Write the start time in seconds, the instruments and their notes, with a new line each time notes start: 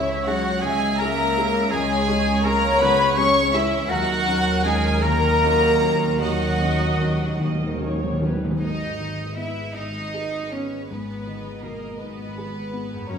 Already playing: felt piano C#2 C#3 G#3 C#4 G#4, double bass section C#2, harp C#3 G#3 G#4, cello section C#3, french horn section E3, violin section E4 E5, oboe E4, viola section C#5, flute E5
0.26 french horn section F#3, felt piano G#3 C#4 G#4, violin section F#4 F#5, oboe F#4, harp C#5, flute F#5
0.61 felt piano C#2 C#3, french horn section G#3, oboe G#4, violin section G#4 G#5, harp E5, viola section E5, flute G#5
0.98 felt piano G#3 C#4 G#4, french horn section A#3, harp G#4, oboe A#4, violin section A#4 A#5, flute A#5
1.35 felt piano G#3 C#4 G#4, harp E4
1.70 harp C#3, french horn section G#3, oboe G#4, violin section G#4 G#5, viola section C#5, flute G#5
1.74 felt piano C#2 C#3
2.08 harp G#3, felt piano G#3 C#4 G#4
2.43 felt piano G#3 C#4 G#4, french horn section A#3, violin section A#4 A#5, oboe A#4, harp C#5, flute A#5
2.78 french horn section B3, violin section B4 B5, oboe B4, harp E5, flute B5
2.83 felt piano C#2 C#3
3.14 felt piano G#3, french horn section C#4, harp G#4, violin section C#5 C#6, oboe C#5, flute C#6
3.18 felt piano C#4 G#4
3.52 french horn section E3, felt piano G#3 C#4 G#4, harp E4, violin section E4 E5, oboe E4, flute E5
3.88 double bass section D#2, felt piano D#2 D#3, cello section D#3, harp D#3, french horn section F#3, oboe F#4, violin section F#4 F#5, viola section A#4, flute F#5
4.06 timpani D#3
4.14 timpani D#3
4.21 timpani D#3
4.27 timpani D#3, felt piano F#3 C#4 D#4, harp C#4
4.45 timpani D#3
4.60 timpani D#3, french horn section G#3, violin section G#5
4.65 felt piano F#3 C#4 D#4, harp F#4, oboe G#4, violin section G#4, flute G#5
5.00 felt piano D#3, french horn section A#3, oboe A#4, violin section A#4 A#5, flute A#5, harp C#6
5.04 felt piano D#2, timpani D#3
5.12 timpani D#3
5.36 timpani D#3, harp F#5
5.44 felt piano F#3 C#4 D#4
5.52 timpani D#3
5.61 timpani D#3
5.68 timpani D#3
5.75 timpani D#3
5.80 felt piano F#3 C#4 D#4, harp C#5
5.92 timpani D#3
5.98 timpani D#3
6.06 timpani D#3
6.15 timpani D#3
6.19 felt piano D#2 D#3, harp D#3, french horn section F#3, oboe F#4, violin section F#4 F#5, viola section D#5, flute F#5
6.24 timpani D#3
6.31 timpani D#3
6.40 timpani D#3
6.49 timpani D#3
6.57 timpani D#3
6.61 timpani D#3, felt piano F#3 C#4 D#4
6.73 timpani D#3
6.80 timpani D#3
6.88 timpani D#3
6.97 timpani D#3
7.01 timpani D#3, felt piano F#3 C#4 D#4, harp F#4
7.13 timpani D#3
7.21 timpani D#3
7.30 timpani D#3
7.38 felt piano D#2 D#3, timpani D#3, harp C#6
7.43 timpani D#3, viola section D#5
7.54 timpani D#3
7.63 timpani D#3
7.71 timpani D#3
7.78 timpani D#3, felt piano F#3 C#4 D#4
7.84 timpani D#3, viola section C#5
7.95 timpani D#3
8.03 timpani D#3
8.12 timpani D#3
8.20 timpani D#3, felt piano F#3 C#4 D#4, viola section B4, harp C#5
8.27 timpani D#3
8.35 timpani D#3
8.45 harp G#2, timpani D#3
8.49 timpani D#3, harp G#3
8.58 felt piano G#2, cello section D#4, harp G#4, violin section D#5
8.62 double bass section G#1
8.99 felt piano D#3, viola section G#4 B4
9.36 felt piano B3, cello section E4, violin section E5
9.75 double bass section G#1, felt piano D#4, cello section D#4, violin section D#5
10.14 felt piano G#4, viola section G#4 B4
10.52 felt piano B3, cello section C#4, violin section C#5
10.87 double bass section G#1, felt piano G#2, cello section B3, violin section B4
11.27 felt piano D#3, viola section G#4 D#5
11.63 felt piano B2, cello section A#3, violin section A#4
11.99 double bass section G#1, cello section B3, felt piano D#4, violin section B4
12.38 felt piano G#4, viola section G#4 B4
12.73 felt piano B3
12.92 harp F#2
12.96 harp C#4
13.01 harp F#4
13.05 double bass section F#1, cello section C#4, violin section C#5, harp A#5
13.09 felt piano F#2, viola section A#4 C#5